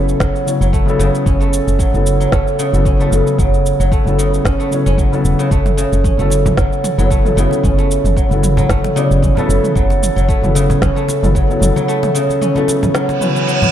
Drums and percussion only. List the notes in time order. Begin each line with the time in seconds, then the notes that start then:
0.09 shaker
0.20 kick, snare, shaker
0.36 shaker
0.48 shaker
0.62 shaker
0.73 kick, shaker
0.89 shaker
1.00 shaker
1.15 shaker
1.26 kick, shaker
1.41 shaker
1.53 shaker
1.68 shaker
1.79 kick, shaker
1.94 shaker
2.06 shaker
2.21 shaker
2.32 kick, snare, shaker
2.48 shaker
2.59 shaker
2.74 shaker
2.85 kick, shaker
3.01 shaker
3.13 shaker
3.27 shaker
3.39 kick, shaker
3.54 shaker
3.66 shaker
3.81 shaker
3.92 kick, shaker
4.07 shaker
4.19 shaker
4.34 shaker
4.45 kick, snare, shaker
4.60 shaker
4.72 shaker
4.87 shaker
4.98 kick, shaker
5.13 shaker
5.25 shaker
5.40 shaker
5.51 kick, shaker
5.66 mid tom, muted conga, shaker
5.78 shaker
5.92 high conga, shaker
6.04 kick, mid tom, shaker
6.19 high conga, shaker
6.30 muted conga, shaker
6.46 mid tom, low conga, shaker
6.57 kick, snare, shaker
6.73 shaker
6.84 mid tom, muted conga, shaker
6.99 shaker
7.10 kick, shaker
7.25 mid tom, shaker
7.38 muted conga, shaker
7.51 high conga, shaker
7.64 kick, mid tom, shaker
7.79 muted conga, shaker
7.91 shaker
8.05 mid tom, shaker
8.17 kick, shaker
8.31 high conga, shaker
8.43 mid tom, muted conga, shaker
8.57 low conga, shaker
8.69 kick, snare, shaker
8.84 mid tom, muted conga, shaker
8.97 shaker
9.11 shaker
9.22 kick, mid tom, shaker
9.37 low conga, shaker
9.49 muted conga, high conga, shaker
9.64 mid tom, shaker
9.76 kick, shaker
9.90 muted conga, shaker
10.03 mid tom, shaker
10.16 high conga, shaker
10.29 kick, shaker
10.43 mid tom, high conga, shaker
10.56 muted conga, shaker
10.70 low conga, shaker
10.82 kick, snare, mid tom, shaker
10.97 shaker
11.08 muted conga, shaker
11.23 mid tom, shaker
11.35 kick, shaker
11.51 shaker
11.62 mid tom, muted conga, shaker
11.76 high conga, shaker
11.89 shaker
12.03 mid tom, muted conga, shaker
12.16 shaker
12.29 high conga, shaker
12.42 mid tom, shaker
12.56 high conga, shaker
12.68 muted conga, shaker
12.83 mid tom, low conga, shaker
12.95 snare, shaker
13.09 muted conga, shaker
13.21 mid tom, shaker
13.36 shaker
13.49 shaker
13.62 mid tom, low conga, shaker